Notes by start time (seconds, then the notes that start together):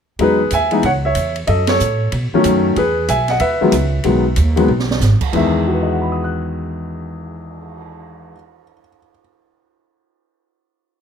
0.19 E2 F#3 G#3 B3 D#4 G#4, kick, ride
0.23 B4
0.51 D#2 E5 G#5, kick, hi-hat pedal, ride
0.71 E3 G#3 B3 D#4, ride
0.83 C#2 C#5 F#5, kick, ride
1.05 C#5 E5
1.15 E2, kick, hi-hat pedal, ride
1.36 ride
1.47 F#2 A4 D#5, kick, ride
1.67 A4 C#5, snare, ride
1.80 A2, hi-hat pedal
2.12 B2, kick, ride
2.33 D#3 F#3 A3 C#4, muted upright bass stroke
2.44 F#2, kick, hi-hat pedal, ride
2.76 E2 G#4 B4, kick, ride
3.08 B1 E5 G#5, kick, hi-hat pedal, ride
3.28 D#5 F#5, snare, ride
3.40 D#2 B4 E5, kick, ride
3.61 D#3 F#3 G#3 B3, muted upright bass stroke
3.72 C#2, kick, hi-hat pedal, ride
4.04 B1 D#3 F#3 G#3 B3, kick, ride
4.36 D#2, kick, hi-hat pedal, ride
4.56 D#3 F#3 G#3 B3, ride
4.68 B1
4.79 snare
4.91 snare
5.00 G#1, snare, hi-hat pedal
5.21 kick, crash
5.33 E2 D#3 E3 G#3 E5, kick, crash
5.53 cymbal swell
5.67 F#4
5.74 B4
5.82 D#5
5.92 F#5
6.02 B5
6.12 D#6
6.24 F#6